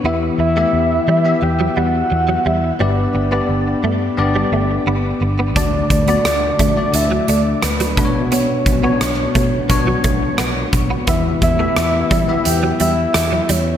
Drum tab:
HH |----------------|----------------|x-xxx-x-x-x-xxx-|x-x-x-x-x-x-x-x-|
SD |----------------|----------------|----r-------r---|----r-------r---|
BD |----------------|----------------|o-o---o-------o-|--o---o-o-o---o-|

HH |x-x-x-x-x-x-x-x-|
SD |----r-------r---|
BD |o-o---o---------|